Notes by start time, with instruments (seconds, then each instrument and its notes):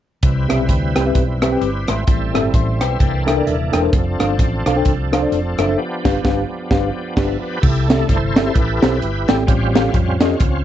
0.23 fingered electric bass C2, tine electric piano C3, tonewheel organ G3 C4 E4 B4, kick, closed hi-hat
0.49 fingered electric bass B1, tine electric piano C4 G4 B4 E5, cross-stick, closed hi-hat
0.69 fingered electric bass D2, kick, closed hi-hat
0.95 fingered electric bass C2, tine electric piano C4 G4 B4 G5, cross-stick, closed hi-hat
1.06 tine electric piano C4 G4 B4 E5
1.15 fingered electric bass B1, kick, closed hi-hat
1.42 tine electric piano C4 G4 B4 E5, cross-stick, closed hi-hat
1.52 tine electric piano C4 G4 B4 G5
1.61 fingered electric bass G1, tine electric piano D6, closed hi-hat
1.88 fingered electric bass G#1, tine electric piano E5 C6, cross-stick, closed hi-hat
2.07 fingered electric bass A1, tine electric piano A2, tonewheel organ G3 C4 E4 A4, kick, closed hi-hat
2.34 fingered electric bass G1, tine electric piano C4 G4 A4 E5, cross-stick, closed hi-hat
2.53 fingered electric bass A1, tonewheel organ A4 C5, tine electric piano E5 C6, kick, closed hi-hat
2.79 fingered electric bass B1, tine electric piano B4 G5, tonewheel organ C5 E5, cross-stick, closed hi-hat
2.99 fingered electric bass C2, tine electric piano C3, tonewheel organ E3 A#3 D4 A4, kick, closed hi-hat
3.27 tine electric piano D4 A4 A#4 E5 G5, cross-stick, closed hi-hat
3.37 tine electric piano D4 A4 A#4 D5
3.46 fingered electric bass D#1, tine electric piano E5, closed hi-hat
3.72 fingered electric bass E1, tine electric piano D4 A4 A#4 G5, cross-stick, closed hi-hat
3.82 tine electric piano D4 A4 A#4 C5
3.92 fingered electric bass F1, tonewheel organ F3 C4 D4 G#4, kick, closed hi-hat
3.98 tonewheel organ A4
4.19 fingered electric bass G1, tine electric piano D4 A4 C5 F5, cross-stick, closed hi-hat
4.39 fingered electric bass A1, kick, closed hi-hat
4.66 fingered electric bass B1, tine electric piano D4 A4 C5 F5, cross-stick, closed hi-hat
4.76 tine electric piano D4 A4 C5 G5
4.85 fingered electric bass C2, kick, closed hi-hat
5.12 tine electric piano D4 A4 C5 F5, cross-stick, closed hi-hat
5.22 tine electric piano D4 A4 C5 D5
5.32 fingered electric bass F1, closed hi-hat
5.58 fingered electric bass F#1, tine electric piano D4 A4 C5 E5, cross-stick, closed hi-hat
5.68 tine electric piano D4 A4 C5 E5
5.78 tonewheel organ F3 B3 D4 G4
6.05 fingered electric bass G1, tine electric piano D4 G4 B4 F5, kick, snare, crash
6.24 fingered electric bass G1, tine electric piano D4 G4 B4 F5, kick, snare
6.71 fingered electric bass G1, tine electric piano D4 G4 B4 F5, kick, snare
7.16 fingered electric bass G1, tine electric piano D4 G4 B4, tonewheel organ E5, kick, snare, crash
7.42 tonewheel organ G4 B4
7.57 tonewheel organ B4
7.61 fingered electric bass C2, tine electric piano C3, tonewheel organ E4 A4, kick, crash
7.87 tonewheel organ A3 D4 E4, tine electric piano C4 G4 A4 E5, snare, closed hi-hat
8.08 fingered electric bass G1, tonewheel organ E4 A4 C5, kick, closed hi-hat
8.36 tine electric piano C4 G4 A4 E5, snare, closed hi-hat
8.54 fingered electric bass A1, tonewheel organ E4 G4 B4, kick, closed hi-hat
8.82 fingered electric bass B1, tine electric piano C4 G4 A4 C5, snare, closed hi-hat
9.02 fingered electric bass G1, closed hi-hat
9.28 fingered electric bass G#1, tine electric piano C4 G4 A4 G5, tonewheel organ A4, snare, closed hi-hat
9.46 fingered electric bass A1, tine electric piano A2, tonewheel organ G3 C4 C#4 F4 G4, kick, closed hi-hat
9.75 tine electric piano C#4 G4 A4 F5, snare, closed hi-hat
9.88 tonewheel organ E4
9.94 fingered electric bass F2, tonewheel organ C4 C#4 F4, kick, closed hi-hat
10.20 tine electric piano C#4 G4 A4 D#5, snare, closed hi-hat
10.40 fingered electric bass C#2, kick, closed hi-hat